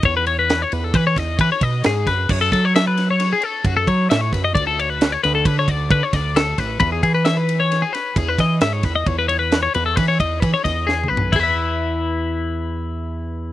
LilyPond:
<<
  \new Staff \with { instrumentName = "Clean electric guitar" } { \time 5/4 \key e \major \tempo 4 = 133 cis''16 b'16 cis''16 b'8 cis''16 b'16 a'16 b'16 cis''16 dis''8 b'16 cis''16 dis''8 gis'8 b'8 | cis''16 a'16 a'16 cis''16 e''16 b'8 cis''8 gis'16 a'8 fis'16 a'16 cis''8 e''16 cis''16 b'16 dis''16 | d''16 a'16 cis''16 b'8 cis''16 b'16 a'16 b'16 cis''16 d''8 b'16 cis''16 d''8 a'8 b'8 | b'16 gis'16 gis'16 b'16 e''16 b'8 cis''8 gis'16 b'8 gis'16 b'16 dis''8 e''16 cis''16 b'16 dis''16 |
cis''16 b'16 cis''16 b'8 cis''16 b'16 a'16 b'16 cis''16 dis''8 b'16 cis''16 dis''8 gis'8 b'8 | <e' gis' b' e''>1~ <e' gis' b' e''>4 | }
  \new Staff \with { instrumentName = "Fingered electric bass" } { \clef bass \time 5/4 \key e \major e,4. e,8 e8 e,8 e16 r16 b,8 gis,8 fis,8 | fis,8 fis2 r8 fis,8 fis8 a,8 fis,8 | d,4. d,8 d8 d,8 d16 r16 d,4 a,,8 | e,8 e2 r8 e,8 e8 gis,8 e,8 |
e,4. e,8 e8 e,8 e16 r16 e,4 b,,8 | e,1~ e,4 | }
  \new DrumStaff \with { instrumentName = "Drums" } \drummode { \time 5/4 <bd cymr>8 cymr8 <cymr sn>8 cymr8 <bd cymr>8 <bd cymr sn>8 <bd cymr>8 <bd cymr>8 <cymr sn>8 <bd cymr sn>8 | <cymc bd>8 <bd cymr sn>8 <cymr sn>8 <cymr sn>8 <cymr sn>8 cymr8 <bd cymr>8 <bd cymr>8 <cymr sn>8 <bd cymr sn>8 | <bd cymr>8 cymr8 <cymr sn>8 <cymr sn>8 <bd cymr>8 <bd cymr>8 <bd cymr>8 <bd cymr sn>8 <cymr sn>8 <bd cymr sn>8 | <bd cymr>8 <bd cymr>8 <cymr sn>8 cymr8 <cymr sn>8 <cymr sn>8 <bd cymr sn>8 <bd cymr sn>8 <cymr sn>8 <bd cymr sn>8 |
<bd cymr>8 cymr8 <cymr sn>8 cymr8 <bd cymr sn>8 <bd cymr>8 <bd cymr>8 <bd cymr sn>8 \tuplet 3/2 { sn8 toml8 tomfh8 } | <cymc bd>4 r4 r4 r4 r4 | }
>>